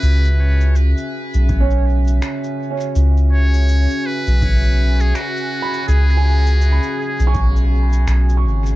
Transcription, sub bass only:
X:1
M:4/4
L:1/16
Q:"Swing 16ths" 1/4=82
K:E
V:1 name="Sub bass" clef=bass
C,,4- C,, z2 B,,,4- B,,, z4 | C,,4- C,, z2 B,,,4- B,,, z4 | C,,4- C,, z2 B,,,4- B,,, B,,,2 G,,,2 |]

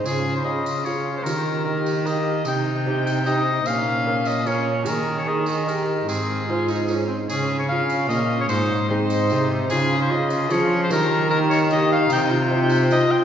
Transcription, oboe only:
X:1
M:3/4
L:1/16
Q:1/4=150
K:Dblyd
V:1 name="Oboe"
A3 c e4 d3 c | B4 B4 e4 | g6 g2 e4 | f6 e2 d2 z2 |
B3 d e4 B4 | A8 z4 | A3 d f4 e3 d | c4 c6 z2 |
A3 c e4 d3 c | B4 B2 d2 e2 f2 | g6 g2 e2 g2 |]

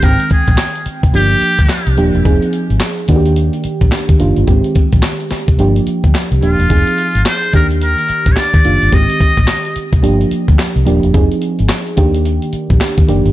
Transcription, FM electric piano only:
X:1
M:4/4
L:1/8
Q:"Swing 16ths" 1/4=108
K:Eb
V:1 name="FM electric piano"
[E,A,Cg]3 z [F,B,DG]2 z [F,B,DG] | [F,CEA]3 [E,B,D_G=G]3 z [E,B,DF] | [E,A,CG]3 z [F,B,DG]2 z [F,B,DG] | [F,CEA]3 [E,B,DG]3 z [E,B,DF] |
[E,A,CG]3 z [F,B,DG]2 z [F,B,DG] | [F,CEA]3 [E,B,DG]3 z [E,B,DG] |]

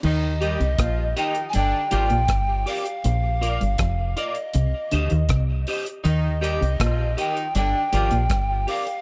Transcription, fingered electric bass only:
X:1
M:4/4
L:1/16
Q:1/4=80
K:Eb
V:1 name="Fingered electric bass" clef=bass
E,,3 C,, B,,,2 z2 G,,, z A,,, B,,, G,,,2 z2 | B,,,3 G,,, F,,,2 z2 C,, z D,, E,, C,,2 z2 | E,,3 C,, B,,,2 z2 G,,, z A,,, B,,, G,,,2 z2 |]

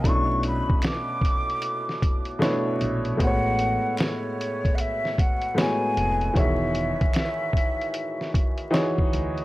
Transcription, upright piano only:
X:1
M:4/4
L:1/8
Q:"Swing 16ths" 1/4=76
K:E
V:1 name="Upright piano"
[B,,A,C=DE]3 z3 [B,,A,DEc]2 | [A,,G,B,F=c^c]3 z3 [A,,G,B,Fc]2 | [D,E,FGc]3 z3 [E,DFGc]2 |]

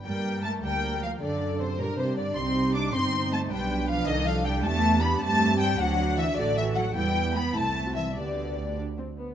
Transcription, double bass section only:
X:1
M:6/8
L:1/8
Q:3/8=103
K:Gm
V:1 name="Double bass section" clef=bass
G,,3 D,,3 | ^F,,3 G,,3 | C,,3 G,,,3 | =B,,,3 C,,3 |
[K:Dmix] E,,3 G,,3 | D,,3 A,,,3 | E,,3 C,,3 | D,,4- D,, z |]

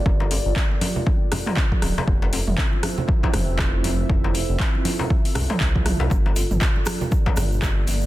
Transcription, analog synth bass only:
X:1
M:4/4
L:1/16
Q:"Swing 16ths" 1/4=119
K:Gdor
V:1 name="Analog synth bass" clef=bass
G,,,2 z G,,, z8 z2 D,,, z | F,,,2 z F,,, z6 F,,,4- F,,, z | F,,,2 z F,,, z6 C,, z C,,2 z C,, | G,,,2 z G,,, z6 G,,,4- G,,, z |]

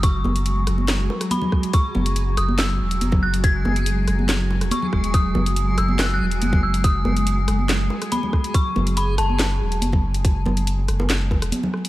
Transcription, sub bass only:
X:1
M:4/4
L:1/16
Q:1/4=141
K:F#dor
V:1 name="Sub bass" clef=bass
F,,,2 F,,,4 F,,,4 z6 | z2 F,,,4 F,,,4 E,,,2 F,,,4- | F,,,2 F,,,4 F,,,4- F,,, E,,, z2 E,,,2- | E,,,2 F,,,4 F,,,4 E,,,2 F,,,4- |
F,,,2 F,,,4 F,,,4 z6 | z2 F,,,4 F,,,4 E,,,2 F,,,4- | F,,,2 F,,,4 F,,,4- F,,, E,,, z4 |]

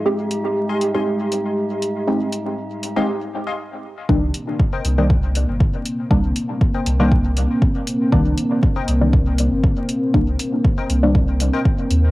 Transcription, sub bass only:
X:1
M:4/4
L:1/16
Q:1/4=119
K:Cm
V:1 name="Sub bass" clef=bass
z16 | z16 | C,,2 z4 C,,4- C,, G,,,2 z3 | C,,2 z4 C,,4- C,, z4 z |
C,,2 z4 C,,4- C,, G,,,2 z3 | C,,2 z4 C,,4- C,, z3 E,,2 |]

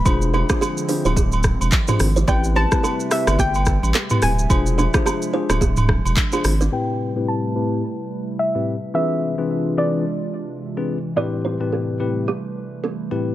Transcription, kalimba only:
X:1
M:4/4
L:1/16
Q:"Swing 16ths" 1/4=108
K:Am
V:1 name="Kalimba"
z2 [DB] [B,G] [B,^G] z [DB] [Ec] [B,G]2 z3 [DB] z [Ec] | [Gd] z [Ec] z [CA]2 z2 [B,G]2 z2 [CA]2 z2 | z2 [DB] [B,G] [B,^G] z [Ec] [DB] [B,G]2 z3 [B,G] z [DB] | z16 |
z16 | [Gd] z [Ec] z [CA]2 z2 [B,G]2 z2 [CA]2 z2 |]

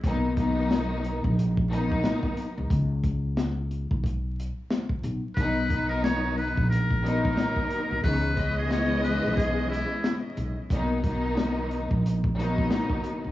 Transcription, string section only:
X:1
M:4/4
L:1/8
Q:"Swing 16ths" 1/4=90
K:B
V:1 name="String section"
[D,F,A,B,D] [D,F,A,B,D]3 z [D,F,A,B,D]3 | z8 | [D,F,B,D] [D,F,B,D]3 z [D,F,A,B,D]3 | [E,G,B,CD] [E,G,B,Cd]6 z |
[D,F,A,B,D] [D,F,A,B,D]3 z [D,F,A,B,D]3 |]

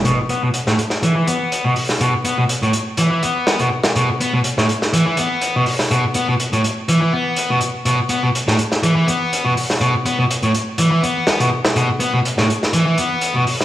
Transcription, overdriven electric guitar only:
X:1
M:4/4
L:1/16
Q:"Swing 16ths" 1/4=123
K:Alyd
V:1 name="Overdriven electric guitar" clef=bass
B,, z B, B,, z A,, z2 E, E, B,3 B,, z2 | B,, z B, B,, z A,, z2 E, E, B,3 B,, z2 | B,, z B, B,, z A,, z2 E, E, B,3 B,, z2 | B,, z B, B,, z A,, z2 E, E, B,3 B,, z2 |
B,, z B, B,, z A,, z2 E, E, B,3 B,, z2 | B,, z B, B,, z A,, z2 E, E, B,3 B,, z2 | B,, z B, B,, z A,, z2 E, E, B,3 B,, z2 |]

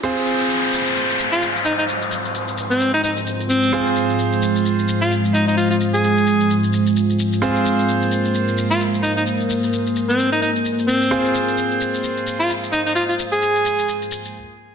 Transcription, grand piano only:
X:1
M:4/4
L:1/8
Q:"Swing 16ths" 1/4=130
K:Fm
V:1 name="Grand piano"
[CFAc]8- | [CFAc]8 | [CFAc]8- | [CFAc]8 |
[CFAc]8- | [CFAc]8 | [CFAc]8- | [CFAc]6 z2 |]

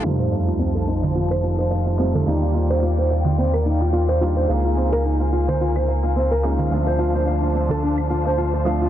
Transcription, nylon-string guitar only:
X:1
M:4/4
L:1/16
Q:"Swing 16ths" 1/4=108
K:Fmix
V:1 name="Nylon-string guitar"
F c f F C A E F F c F c f F C A | E F F c F c f F C B E F F c F c | f F C B E F F c F c f F C B E F | F c F c f F C A D F F c F c f F |]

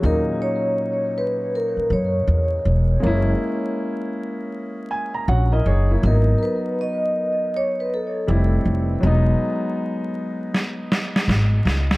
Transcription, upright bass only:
X:1
M:4/4
L:1/8
Q:"Swing 16ths" 1/4=80
K:D#phr
V:1 name="Upright bass" clef=bass
D,, z4 F,, E,, E,,, | F,,, z4 z A,,, F,,, | G,,, z4 z =F,,, F,,, | E,,, z4 z G,,, C,, |]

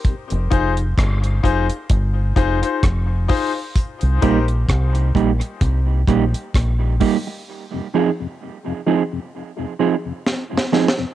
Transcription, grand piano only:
X:1
M:4/4
L:1/16
Q:"Swing 16ths" 1/4=65
K:Fdor
V:1 name="Grand piano"
z2 [EFAc] z3 [EFAc] z3 [EFAc] [EFAc] z2 [EFAc] [Ac] | z2 [EGBc] z12 z | z16 |]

